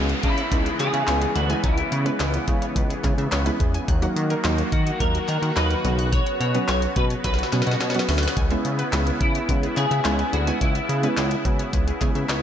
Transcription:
Already playing: C#2 C#3 E3 G#3 B3 C#4 F#4, downlifter
0.09 closed hi-hat
0.23 C#3 E4, kick, closed hi-hat
0.38 C#5, closed hi-hat
0.51 C#2 G#3 B3 C#4 D#4 B4, kick, closed hi-hat
0.66 G#4, closed hi-hat
0.80 C#3 G#4 G#5, clap, closed hi-hat
0.94 C#3 E5, closed hi-hat
1.07 C#2 G#3 B3 C#4 E4 C#5, snare, clap, closed hi-hat
1.21 B4, closed hi-hat
1.35 D2 F#4 G#4, closed hi-hat
1.50 G#3 B3 C#4 E4 G#5, closed hi-hat
1.63 C#2 E4 G#5, kick, closed hi-hat
1.78 E5, closed hi-hat
1.92 C#3, closed hi-hat
2.06 G#3 B3 C#4 E4 B4, closed hi-hat
2.20 C#2 G#4, snare, clap, closed hi-hat
2.34 closed hi-hat
2.48 C#3 G#3 B3 C#4 E4, kick, closed hi-hat
2.62 C#5, closed hi-hat
2.76 C#2 B4, kick, closed hi-hat
2.90 G#4, closed hi-hat
3.04 C#3 G#3 B3 C#4 E4 G#5, kick, clap, closed hi-hat
3.18 C#3 E5, closed hi-hat
3.32 C#2 C#5, snare, clap, closed hi-hat
3.46 G#3 B3 C#4 E4 B4, closed hi-hat
3.60 E2 G#4, kick, closed hi-hat
3.74 G#5, closed hi-hat
3.88 D#2 D#3 A#3 F#4 F#6, kick, closed hi-hat
4.02 F#3 A#3 D#4 F#4 F#5, closed hi-hat
4.16 D#3, closed hi-hat
4.30 A#4, closed hi-hat
4.44 D#2 F#3 A#3 D#4 F#4, snare, clap, closed hi-hat
4.58 closed hi-hat
4.72 D#3 F#4, kick, closed hi-hat
4.86 D#5, closed hi-hat
5.00 D#2 F#3 A#3 D#4 F#4 A#4, kick, closed hi-hat
5.14 F#4, closed hi-hat
5.28 D#3 A#4 F#6, clap, closed hi-hat
5.42 D#3 F#5, closed hi-hat
5.56 D#2 F#3 A#3 D#4 F#4 B4 D#5, snare, clap, closed hi-hat
5.70 A#4, closed hi-hat
5.84 B1 C#3 F#3 B3 C#4 F#4, closed hi-hat
5.98 F#6, closed hi-hat
6.12 C#5 F#6, kick, closed hi-hat
6.26 F#5, closed hi-hat
6.40 B2 C#5, closed hi-hat
6.55 F#3 B3 C#4 F#4 B4, closed hi-hat
6.68 B1 F#4 C#5, snare, clap, closed hi-hat
6.82 closed hi-hat
6.96 B2 F#3 B3 C#4 F#4 B4, kick, closed hi-hat
7.10 C#5, closed hi-hat
7.24 B1 B4, kick, snare, closed hi-hat
7.34 snare
7.39 F#4, closed hi-hat
7.43 snare
7.52 B2 F#3 B3 C#4 F#4 F#6, snare, clap, closed hi-hat
7.62 snare
7.67 B2 F#4 F#5, closed hi-hat
7.71 snare
7.81 B2 C#5, snare, clap, closed hi-hat
7.90 snare
7.94 F#3 B3 C#4 F#4 B4, closed hi-hat
7.99 snare
8.09 D2 F#4, snare, open hi-hat
8.18 snare
8.23 F#6, closed hi-hat
8.28 snare
8.37 C#2 E4 G#5, kick, closed hi-hat
8.51 G#3 B3 C#4 E4 E5, closed hi-hat
8.65 C#3, closed hi-hat
8.79 B4, closed hi-hat
8.93 C#2 G#3 B3 C#4 E4 G#4, snare, clap, closed hi-hat
9.07 closed hi-hat
9.21 C#3 E4, kick, closed hi-hat
9.35 C#5, closed hi-hat
9.49 C#2 G#3 B3 C#4 E4 B4, kick, closed hi-hat
9.63 G#4, closed hi-hat
9.77 C#3 G#4 G#5, clap, closed hi-hat
9.91 C#3 E5, closed hi-hat
10.05 C#2 G#3 B3 C#4 E4 C#5, snare, clap, closed hi-hat
10.19 B4, closed hi-hat
10.33 D2 F#4 G#4, closed hi-hat
10.47 G#3 B3 C#4 E4 G#5, closed hi-hat
10.61 C#2 E4 G#5, kick, closed hi-hat
10.75 E5, closed hi-hat
10.89 C#3, closed hi-hat
11.03 G#3 B3 C#4 E4 B4, closed hi-hat
11.17 C#2 G#4, snare, clap, closed hi-hat
11.31 closed hi-hat
11.45 C#3 G#3 B3 C#4 F#4, kick, closed hi-hat
11.59 C#5, closed hi-hat
11.73 C#2 B4, kick, closed hi-hat
11.87 G#4, closed hi-hat
12.01 C#3 G#3 B3 C#4 E4 G#5, kick, clap, closed hi-hat
12.15 C#3 E5, closed hi-hat
12.29 C#2 C#5, snare, clap, closed hi-hat

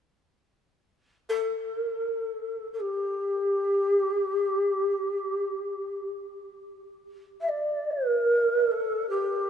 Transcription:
1.29 A4
2.73 A4
2.80 G4
7.41 E5
7.49 D5
7.91 A#4
8.71 A4
9.10 G4

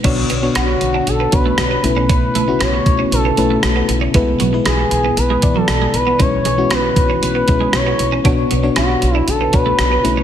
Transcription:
0.04 B1 B2 D3 B3 D4 F#4 C#5, kick, closed hi-hat, crash
0.30 B1 B3, closed hi-hat
0.42 B3 D4 F#4 C#5, muted clean electric guitar stroke
0.55 B1 C#4 F#4, cross-stick, closed hi-hat
0.68 muted clean electric guitar stroke
0.81 B1, closed hi-hat
0.94 D4
1.07 B1 A4, closed hi-hat
1.20 B3
1.32 B1 B3 D4 F#4 B4 C#5, muted clean electric guitar stroke, kick, closed hi-hat
1.46 A3
1.58 B1, cross-stick, closed hi-hat
1.71 B3
1.83 B1 B2 C#3 A3 C#4 E4 B4, muted clean electric guitar stroke, closed hi-hat
1.97 C#4
2.09 C#4 B4, kick, closed hi-hat
2.35 B1 A3, closed hi-hat
2.47 A3 C#4 E4 F#4, muted clean electric guitar stroke
2.60 B1 B3 C#5, cross-stick, closed hi-hat
2.74 muted clean electric guitar stroke
2.86 B1, kick, closed hi-hat
2.99 C#4
3.11 B1 A4, closed hi-hat
3.25 B3
3.37 B1 A3 C#4 E4 B4, muted clean electric guitar stroke, closed hi-hat
3.50 A3
3.63 B1, cross-stick, closed hi-hat
3.76 B3
3.89 B1, muted clean electric guitar stroke, closed hi-hat
4.01 C#4
4.14 B1 B2 E3 G#3 B3 E4 B4, kick, closed hi-hat
4.40 B1 F#3, closed hi-hat
4.53 G#3 B3 E4 B4, muted clean electric guitar stroke
4.65 B1 G#3 G#4, cross-stick, closed hi-hat
4.79 muted clean electric guitar stroke
4.91 B1, closed hi-hat
5.05 B3
5.17 B1 B4, closed hi-hat
5.30 G#3
5.42 B1 E3 B3 E4 D5, muted clean electric guitar stroke, kick, closed hi-hat
5.56 F#3 A4
5.68 B1, cross-stick, closed hi-hat
5.81 G#3
5.94 B1 B4, muted clean electric guitar stroke, closed hi-hat
6.07 B3
6.19 B1 B2 G#3 C#4 E4 B4 C#5, kick, closed hi-hat
6.45 B1 G#3, closed hi-hat
6.57 G#3 C#4 E4 F#4, muted clean electric guitar stroke
6.71 B1 B3 B4, cross-stick, closed hi-hat
6.84 muted clean electric guitar stroke
6.96 B1, kick, closed hi-hat
7.10 C#4
7.22 B1 B4, closed hi-hat
7.35 B3
7.48 B1 G#3 C#4 E4 B4, muted clean electric guitar stroke, kick, closed hi-hat
7.61 G#3
7.73 B1 C#5, cross-stick, closed hi-hat
7.86 B3
7.99 B1, muted clean electric guitar stroke, closed hi-hat
8.12 C#4
8.24 B1 B2 D3 B3 D4 F#4 C#5, kick, closed hi-hat
8.51 B1 B3, closed hi-hat
8.62 B3 D4 F#4 C#5, muted clean electric guitar stroke
8.76 B1 C#4 F#4, cross-stick, closed hi-hat
8.89 muted clean electric guitar stroke
9.02 B1, closed hi-hat
9.15 D4 E4
9.28 B1 A4, closed hi-hat
9.41 B3
9.52 B1 B3 D4 F#4 B4 C#5, muted clean electric guitar stroke, kick, closed hi-hat
9.66 A3
9.79 B1, cross-stick, closed hi-hat
9.92 B3
10.03 B1 B2 C#3 A3 B3 C#4 E4 B4, muted clean electric guitar stroke, closed hi-hat
10.17 C#4

